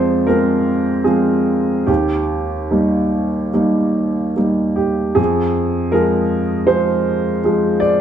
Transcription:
upright piano
Already playing: F2 F3 G#3 C4 C5 D5
0.27 F3 G#3 C4 A#4
1.04 F3 G#3 C4 G#4
1.86 D#2 G4
2.71 G3 A#3 D#4
3.54 G3 A#3 D#4
4.36 G3 A#3 D#4
4.76 G4
5.15 F2 G#4
5.92 F3 G#3 G#4 A#4
6.67 F3 G#3 G#4 C5
7.44 F3 G#3 G#4
7.80 D5

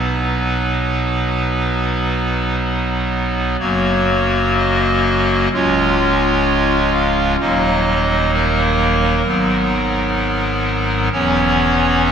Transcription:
pipe organ
Already playing: B1 B2 F#3 B3 D#4 B4
3.59 F#1 F#2 F#3 A#3 F#4 C#5
4.57 D#5
5.53 C#1 C#2 G#3 C#4 F4 C#5
6.93 F5
7.40 D#1 D#2 F#3 A#3 D#4 D#5
8.34 A#4
9.27 G#1 G#2 F#3 B3 D#4
11.12 E1 E2 E3 B3 C#4 C#5
12.05 E5

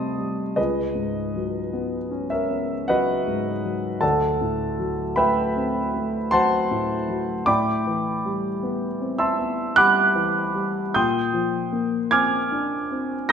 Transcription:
grand piano
Already playing: F2 C3 G3 A3 C4 D5 D#5 G5 A5 B5 C6 D6 D#6
0.18 G3
0.56 C#2 G#4 B4 D#5
0.95 G#2
1.35 F#3
1.73 B3
2.11 C#4
2.30 A#4 C#5 E5
2.50 B3
2.88 F#3 F#4 B4 D#5 F#5
3.27 G#2
3.64 F#3
4.01 D2 A4 D5 F#5 A5
4.41 A2
4.79 F#3
5.16 A3 B4 E5 G5 B5
5.56 C4
5.94 A3
6.31 F#3 C5 F#5 A5 C6
6.71 A2
7.09 F#3
7.46 A2 D5 G5 B5 D6
7.87 E3
8.25 G3
8.63 B3
9.01 C4
9.18 E5 A5 C6 E6
9.38 B3
9.76 G3 F#5 B5 D6 F#6
10.15 E3
10.55 G3
10.94 A#2 G5 C6 D#6 G6
11.33 F3
11.72 A#3
12.11 C4 G#5 D6 F6 G#6
12.52 D4
12.91 C4
13.29 A#6

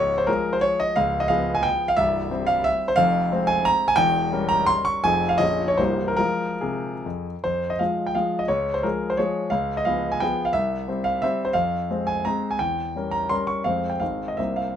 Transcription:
grand piano
Already playing: C#1 C#2 C#5
0.18 C5
0.27 F3 G#3 G#4 A#4
0.53 C5
0.61 C#5
0.80 D#5
0.96 C#1 C#2 F5
1.20 D#5
1.28 F3 B3 G#4 F5
1.55 G#5
1.63 G5
1.88 F5
1.97 C1 C2 E5
2.30 G3 C4 C5
2.47 F5
2.64 E5
2.88 C5
2.96 F1 F2 F5
3.32 G#3 C4 C5
3.47 G#5
3.65 A#5
3.88 G#5
3.96 E1 E2 G5
4.32 G3 C#4 A#4
4.49 A#5
4.66 C6
4.85 C#6
5.04 F1 F2 F3 C4 G#4 G#5
5.29 F5
5.38 A#0 A#1 F3 C#4 G#4 D#5
5.68 C#5
5.77 C1 C2 E3 A#3 G4 C5
6.08 A#4
6.17 F3 G#3 F4 A#4
6.61 C3 G#4
7.06 F2
7.44 F2 C5
7.70 D#5
7.79 F3 G#3 F4 F5
8.07 G5
8.15 F3 G#3 F4 F5
8.39 D#5
8.48 C#2 C#5
8.74 C5
8.83 F3 G#3 G#4 A#4
9.10 C5
9.17 F3 G#3 G#4 C#5
9.50 C#2 F5
9.77 D#5
9.85 F3 B3 G#4 F5
10.12 G#5
10.20 F3 B3 G#4 G5
10.45 F5
10.53 C2 E5
10.88 G3 C4 C5
11.04 F5
11.22 G3 C4 C5 E5
11.45 C5
11.53 F2 F5
11.90 G#3 C4 C5
12.07 G#5
12.25 G#3 C4 C5 A#5
12.51 G#5
12.59 E2 G5
12.96 G3 C#4 A#4
13.11 A#5
13.29 G3 C#4 A#4 C6
13.47 C#6
13.64 F2 G#3 C4 C5 F5
13.90 G5
13.99 G#1 G#3 C4 C5 F5
14.28 D#5
14.37 C2 A#3 C4 C5 E5
14.56 F5

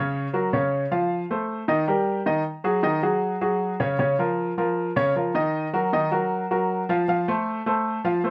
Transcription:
grand piano
Already playing: C#3 C#4 C#5
0.33 F#3 F#4 A#4
0.53 C#3 C#4 C#5
0.91 F3 F4 F5
1.31 A3 A4 C5
1.68 D#3 D#4 D#5
1.88 G3 G4 A#4
2.26 D#3 D#4 D#5
2.64 F#3 F#4 G#4
2.83 D#3 D#4 D#5
3.03 F#3 F#4 G#4
3.41 F#3 F#4 G#4
3.80 C#3 C#4 C#5
3.99 C#3 C#4 C#5
4.19 F3 F4 A#4
4.58 F3 F4 A#4
4.96 C#3 C#4 C#5
5.16 F3 F4 A#4
5.35 D#3 D#4 D#5
5.73 F#3 F#4 A#4
5.93 D#3 D#4 D#5
6.11 F#3 F#4 A#4
6.51 F#3 F#4 A#4
6.89 F3 F4 F5
7.08 F3 F4 F5
7.28 A3 A4 C5
7.66 A3 A4 C5
8.04 F3 F4 F5
8.24 A3 A4 C5

